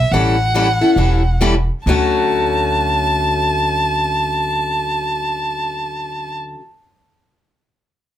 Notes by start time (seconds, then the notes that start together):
Already playing: E5
0.11 A1 E3 G3 C#4 E4 A4 F#5
0.54 E3 G3 C#4 E4 A4
0.81 C#4 E4 A4
0.96 E1 E3 G3 C#4 E4 A4
1.41 E3 G3 C#4 E4 A4
1.86 D2 D3 F#3 A3 C#4 F#4 A5